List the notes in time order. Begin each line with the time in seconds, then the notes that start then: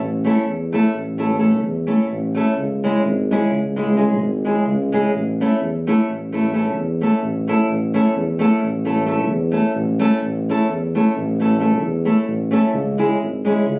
0.00 A1
0.24 A3 C#4 E4 A4
0.47 E2
0.72 A3 C#4 E4 A4
0.95 A1
1.18 A3 C#4 E4 A4
1.39 A3 C#4 E4 A4
1.62 E2
1.87 A3 C#4 E4 A4
2.10 A1
2.35 A3 C#4 E4 A4
2.57 C#2
2.84 G#3 C#4 E4 G#4
3.05 G#1
3.31 G#3 C#4 E4 G#4
3.51 C#2
3.76 G#3 C#4 E4 G#4
3.97 G#3 C#4 E4 G#4
4.19 G#1
4.45 G#3 C#4 E4 G#4
4.66 C#2
4.92 G#3 C#4 E4 G#4
5.14 A1
5.41 A3 C#4 E4 A4
5.61 E2
5.87 A3 C#4 E4 A4
6.09 A1
6.32 A3 C#4 E4 A4
6.53 A3 C#4 E4 A4
6.75 E2
7.01 A3 C#4 E4 A4
7.22 A1
7.47 A3 C#4 E4 A4
7.69 A1
7.94 A3 C#4 E4 A4
8.16 E2
8.39 A3 C#4 E4 A4
8.63 A1
8.85 A3 C#4 E4 A4
9.06 A3 C#4 E4 A4
9.29 E2
9.51 A3 C#4 E4 A4
9.75 A1
9.99 A3 C#4 E4 A4
10.23 A1
10.49 A3 C#4 E4 A4
10.69 E2
10.95 A3 C#4 E4 A4
11.17 A1
11.40 A3 C#4 E4 A4
11.60 A3 C#4 E4 A4
11.81 E2
12.05 A3 C#4 E4 A4
12.28 A1
12.51 A3 C#4 E4 A4
12.74 C#2
12.98 G#3 C#4 E4 G#4
13.21 G#1
13.45 G#3 C#4 E4 G#4
13.66 C#2